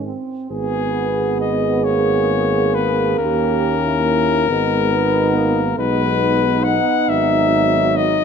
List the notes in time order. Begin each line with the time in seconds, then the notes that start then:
Already playing: G#2 D#3 G#3
0.03 C4
0.50 G#1 B3 G#4
1.40 D#5
1.84 A#3 C#5
2.75 B4
3.19 D#2 C#4 G4 A#4
3.84 E4
4.48 G#1 G#3 B3 D#4
4.94 B3
5.37 A#3
5.78 B1 G#3 B3 D#4 B4
6.64 F#5
7.09 G#1 F#3 E5
7.97 D#5